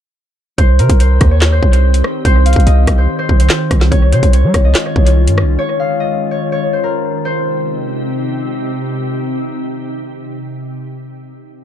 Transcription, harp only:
0.58 1.00 C5 loud
0.79 2.91 A#4 medium
1.00 1.37 C5 medium
1.31 1.58 C#5 medium
1.52 1.72 C5 medium
1.73 2.25 C5 medium
2.25 2.98 C5 loud
2.46 4.12 F5 medium
2.67 4.45 D#5 medium
2.98 3.18 C5 medium
3.19 3.39 C5 medium
3.40 3.97 C5 medium
3.91 4.19 C#5 loud
4.13 4.39 C5 medium
4.33 4.85 C#5 medium
4.65 6.00 D#5 medium
4.86 5.06 C#5 medium
5.06 5.58 C#5 medium
5.59 6.31 C#5 loud
5.80 7.46 F5 medium
6.00 7.79 D#5 medium
6.31 6.52 C#5 medium
6.52 6.79 C#5 loud
6.73 7.25 C5 medium
6.84 8.96 A#4 medium
7.25 9.23 C5 medium

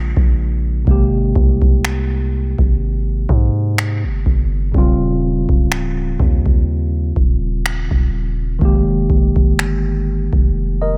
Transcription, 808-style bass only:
0.00 0.14 A#1 loud
0.17 0.84 A#1 loud
0.87 1.34 G#1 loud
1.36 2.55 C2 loud
2.59 3.26 G#1 medium
3.29 4.05 G#2 loud
4.04 4.25 G1 medium
4.26 4.72 G1 loud
4.74 5.46 D#1 loud
5.49 6.17 C#1 medium
6.20 7.12 D#2 loud
7.16 7.88 D#1 loud
7.91 8.59 D#1 loud
8.61 9.08 F1 loud
9.10 9.60 F1 loud
9.58 10.29 G1 loud
10.33 10.97 F1 medium

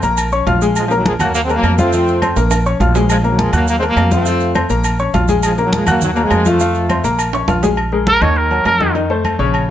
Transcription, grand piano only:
0.03 0.27 A#3 medium
0.03 0.27 A#4 medium
0.03 0.27 A#5 medium
0.32 0.44 C#4 medium
0.32 0.44 C#5 medium
0.32 0.44 C#6 medium
0.47 0.59 F4 medium
0.47 0.59 F5 medium
0.47 0.59 F6 medium
0.62 0.86 G#3 medium
0.62 0.86 G#4 medium
0.62 0.86 G#5 medium
0.91 1.15 A#3 medium
0.91 1.15 A#4 medium
0.91 1.15 A#5 medium
1.20 1.44 F#4 medium
1.20 1.44 F#5 medium
1.20 1.45 F#6 medium
1.50 1.73 A#3 medium
1.50 1.74 A#4 medium
1.50 1.74 A#5 medium
1.79 1.90 F3 medium
1.79 1.91 F4 loud
1.79 1.91 F5 medium
1.93 2.17 F3 medium
1.93 2.17 F4 medium
1.93 2.17 F5 medium
2.22 2.34 C4 medium
2.22 2.34 C5 medium
2.22 2.35 C6 medium
2.36 2.60 A#3 medium
2.36 2.61 A#4 medium
2.36 2.61 A#5 medium
2.66 2.78 C#4 medium
2.66 2.78 C#5 medium
2.66 2.78 C#6 medium
2.81 2.93 F4 medium
2.81 2.93 F5 medium
2.81 2.93 F6 medium
2.95 3.19 G#3 medium
2.95 3.19 G#4 medium
2.95 3.19 G#5 medium
3.24 3.48 A#3 medium
3.24 3.48 A#4 medium
3.24 3.48 A#5 medium
3.53 3.77 F#4 medium
3.53 3.77 F#5 medium
3.53 3.77 F#6 medium
3.82 4.06 A#3 medium
3.82 4.07 A#4 medium
3.82 4.07 A#5 medium
4.11 4.24 F3 medium
4.11 4.24 F4 medium
4.11 4.24 F5 medium
4.26 4.50 F3 medium
4.26 4.50 F4 medium
4.26 4.50 F5 medium
4.55 4.67 C4 medium
4.55 4.67 C5 medium
4.55 4.67 C6 medium
4.70 4.94 A#3 medium
4.70 4.94 A#4 medium
4.70 4.94 A#5 medium
4.99 5.11 C#4 medium
4.99 5.12 C#5 medium
4.99 5.12 C#6 medium
5.14 5.26 F4 medium
5.14 5.26 F5 medium
5.14 5.26 F6 medium
5.29 5.53 G#3 medium
5.29 5.53 G#4 medium
5.29 5.53 G#5 medium
5.58 5.82 A#3 medium
5.58 5.82 A#4 medium
5.58 5.82 A#5 medium
5.87 6.11 F#4 medium
5.87 6.11 F#5 medium
5.87 6.12 F#6 medium
6.17 6.40 A#3 medium
6.17 6.41 A#4 medium
6.17 6.41 A#5 medium
6.46 6.58 F3 medium
6.46 6.58 F4 medium
6.46 6.58 F5 medium
6.61 6.84 F3 medium
6.61 6.85 F4 medium
6.61 6.85 F5 medium
6.90 7.02 C4 medium
6.90 7.02 C5 medium
6.90 7.02 C6 medium
7.04 7.28 A#3 medium
7.04 7.28 A#4 medium
7.04 7.29 A#5 medium
7.34 7.46 C#4 medium
7.34 7.46 C#5 medium
7.34 7.46 C#6 medium
7.49 7.60 F4 medium
7.49 7.60 F5 medium
7.49 7.61 F6 medium
7.63 7.75 G#3 medium
7.63 7.75 G#4 medium
7.63 7.75 G#5 medium
7.92 8.16 G#3 medium
7.92 8.17 G#4 medium
7.92 8.17 A#4 medium
8.22 8.46 D#3 medium
8.22 8.46 D#4 medium
8.22 8.46 D#5 medium
8.51 8.75 F#3 medium
8.51 8.75 F#4 medium
8.51 8.75 A#4 medium
8.80 8.92 D#3 medium
8.80 8.92 D#4 medium
8.80 8.93 D#5 medium
8.95 9.07 D#3 medium
8.95 9.07 D#4 medium
8.95 9.08 D#5 medium
9.10 9.34 A3 medium
9.10 9.34 A4 medium
9.10 9.34 C5 medium
9.39 9.63 C#3 loud
9.39 9.63 C#4 loud
9.39 9.64 C#5 loud

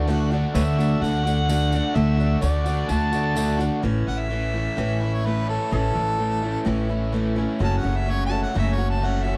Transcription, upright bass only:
0.00 0.43 D2 loud
0.55 0.94 D2 loud
1.02 1.80 D2 loud
1.96 2.35 D2 loud
2.43 2.82 D2 loud
2.90 3.68 D2 loud
3.84 4.03 A1 loud
4.07 4.66 A1 medium
4.78 5.56 A1 loud
5.72 5.92 A1 loud
5.96 6.54 A1 medium
6.66 7.45 A1 loud
7.60 7.80 F#1 loud
7.85 8.44 F#1 medium
8.56 9.34 F#1 loud

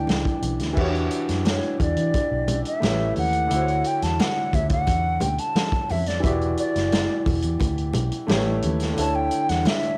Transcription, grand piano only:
0.00 0.72 E3 medium
0.00 0.74 D4 medium
0.00 0.73 E4 soft
0.00 0.75 G4 medium
0.00 0.76 D5 medium
0.73 2.76 E3 medium
0.73 2.77 E4 medium
0.73 2.78 F#4 medium
0.79 2.79 G4 medium
0.79 0.85 C#5 medium
0.87 2.83 D4 medium
2.80 3.50 A3 medium
2.80 3.50 E4 medium
2.80 3.51 G4 medium
2.80 3.51 B4 medium
2.84 3.52 C#5 medium
3.47 6.19 D3 medium
3.47 6.20 D4 medium
3.51 6.20 E4 medium
3.51 6.21 F#4 medium
3.51 3.59 C5 medium
3.62 6.26 C#5 medium
6.20 8.23 E3 medium
6.20 8.24 E4 medium
6.24 8.25 F#4 medium
6.24 8.26 G4 medium
6.24 8.27 D5 medium
8.27 8.96 A3 medium
8.27 8.96 E4 medium
8.27 8.97 G4 medium
8.27 8.98 B4 medium
8.31 8.98 C#5 medium
8.93 9.98 D3 medium
8.93 9.98 D4 medium
8.97 9.98 E4 medium
8.97 9.98 A4 medium
9.01 9.98 C#5 medium

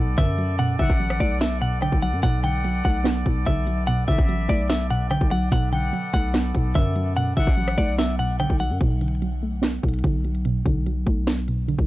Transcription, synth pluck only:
0.00 0.58 B2 medium
0.00 0.16 D3 medium
0.00 0.37 F#3 medium
0.00 0.59 A3 medium
0.00 0.79 B3 medium
0.18 0.78 D3 medium
0.38 0.99 F#3 medium
0.59 1.61 B2 medium
0.80 1.81 D3 medium
1.00 2.02 F#3 medium
1.20 2.23 A3 medium
1.41 2.23 B3 loud
1.62 2.22 B2 medium
1.82 2.23 D3 medium
2.03 2.23 F#3 medium
2.23 3.25 B2 loud
2.44 3.45 D3 medium
2.65 3.66 F#3 medium
2.85 3.88 A3 medium
3.04 4.08 B3 loud
3.26 3.87 B2 medium
3.47 4.07 D3 medium
3.67 4.28 F#3 medium
3.88 4.89 B2 loud
4.08 5.10 D3 medium
4.29 5.31 F#3 medium
4.49 5.52 A3 medium
4.70 5.52 B3 medium
4.91 5.50 B2 medium
5.11 5.52 D3 medium
5.32 5.52 F#3 medium
5.52 6.53 B2 loud
5.72 6.74 D3 medium
5.93 6.95 F#3 medium
6.13 7.16 A3 medium
6.34 7.37 B3 medium
6.55 7.16 B2 medium
6.75 7.36 D3 medium
6.96 7.56 F#3 medium
7.17 8.18 B2 medium
7.37 8.39 D3 medium
7.57 8.59 F#3 medium
7.77 8.80 A3 medium
7.99 8.81 B3 loud
8.19 8.80 B2 medium
8.40 8.81 D3 medium
8.60 8.81 F#3 medium
8.81 9.83 B2 loud
9.01 10.03 D3 medium
9.22 10.23 F#3 medium
9.43 10.45 A3 medium
9.62 10.65 B3 loud
9.84 10.44 B2 medium
10.04 10.65 D3 medium
10.24 10.85 F#3 medium
10.45 11.47 B2 medium
10.66 11.67 D3 medium
10.86 11.87 F#3 medium
11.06 11.87 A3 medium
11.27 11.87 B3 medium
11.48 11.87 B2 medium
11.68 11.87 D3 medium

